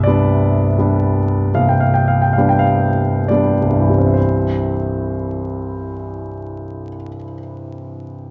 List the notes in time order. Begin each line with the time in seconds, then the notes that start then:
Already playing: C1 C2 E5
0.04 G3 B3 D5
0.08 D4
0.78 G3 B3 D4
1.54 C1 C2 F5
1.69 G5
1.80 F5
1.94 G5
2.08 F5
2.22 G5
2.33 F5
2.38 G3 B3 D4
2.49 G5
2.59 F5
3.28 G3 B3 D4 D5
3.62 C2
3.70 G2
3.80 E3
3.90 G3
3.98 C4
4.07 E4
4.14 C5